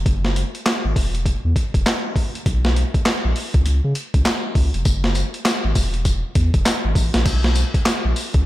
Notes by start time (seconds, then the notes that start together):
0.06 F#1, kick, closed hi-hat
0.25 snare
0.36 closed hi-hat
0.55 closed hi-hat
0.66 snare, clap, closed hi-hat
0.85 G#1
0.96 E1, kick, open hi-hat
1.15 closed hi-hat
1.26 kick, closed hi-hat
1.45 E2
1.56 kick, closed hi-hat
1.74 E1, kick, closed hi-hat
1.86 snare, clap, closed hi-hat
2.16 kick, open hi-hat
2.35 closed hi-hat
2.46 B1, kick, closed hi-hat
2.65 snare
2.76 closed hi-hat
2.94 kick, closed hi-hat
3.06 snare, clap, closed hi-hat
3.25 A#1
3.36 open hi-hat
3.54 C#2, kick, closed hi-hat
3.66 C#2, closed hi-hat
3.84 C#3
3.95 closed hi-hat
4.14 C#2, kick, closed hi-hat
4.25 snare, clap, closed hi-hat
4.55 C#2, kick, open hi-hat
4.74 F1, closed hi-hat
4.85 F#1, kick, closed hi-hat, tambourine
5.04 snare
5.15 closed hi-hat, tambourine
5.34 closed hi-hat
5.45 snare, clap, closed hi-hat, tambourine
5.64 G#1
5.75 E1, kick, open hi-hat, tambourine
5.94 closed hi-hat
6.05 kick, closed hi-hat, tambourine
6.35 E2, kick, closed hi-hat
6.54 E1, kick, closed hi-hat
6.65 snare, clap, closed hi-hat, tambourine
6.85 G#1
6.95 A1, kick, open hi-hat, tambourine
7.14 A#1, snare, closed hi-hat
7.26 B1, kick, closed hi-hat, crash, tambourine
7.44 snare
7.55 closed hi-hat, tambourine
7.74 kick, closed hi-hat
7.86 snare, clap, closed hi-hat, tambourine
8.05 A#1
8.16 open hi-hat, tambourine
8.34 C#2, kick, closed hi-hat